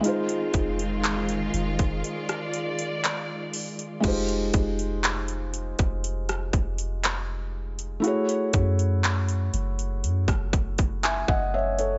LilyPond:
<<
  \new Staff \with { instrumentName = "Felt piano" } { \time 4/4 \key f \minor \tempo 4 = 60 << { r1 | r1 | r2. <fes'' aes''>16 <ees'' ges''>16 <des'' fes''>16 <a' des''>16 | } \\ { <aes ees' f' c''>1 | <aes ees' f' g' c''>1 | <a fes' ges' aes' des''>1 | } >> }
  \new Staff \with { instrumentName = "String section" } { \time 4/4 \key f \minor << { c'2 d''2 | r1 | r1 | } \\ { <ees aes f'>1 | r1 | r1 | } >> }
  \new Staff \with { instrumentName = "808-style bass" } { \clef bass \time 4/4 \key f \minor r8 f,,4 f,,16 f,,16 r2 | f,,8 f,,4~ f,,16 f,,8. f,,4. | r8 ges,4 ges,,8 ges,16 ges,,4 ges,,8. | }
  \new DrumStaff \with { instrumentName = "Drums" } \drummode { \time 4/4 hh16 hh16 <hh bd>16 hh16 <hc hh>16 hh16 hh16 <hh bd>16 hh16 <hh ss>16 hh16 hh16 <hc hh>8 hho16 hh16 | <cymc hh bd>16 hh16 <hh bd>16 hh16 <hc hh>16 hh16 hh16 <hh bd>16 hh16 <hh ss>16 <hh bd>16 hh16 <hc hh>8. hh16 | hh16 hh16 <hh bd>16 hh16 <hc hh>16 hh16 hh16 hh16 hh16 <hh bd ss>16 <hh bd>16 <hh bd>16 <hc hh>16 bd8 hh16 | }
>>